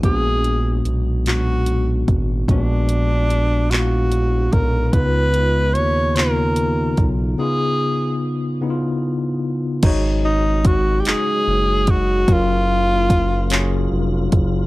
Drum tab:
CC |------|------|------|------|
HH |xxxxxx|xxxxxx|xxxxxx|------|
CP |---x--|---x--|---x--|------|
BD |o----o|o----o|o----o|------|

CC |x-----|------|
HH |x-xx-x|x-xx-x|
CP |---x--|---x--|
BD |o-o--o|o-o--o|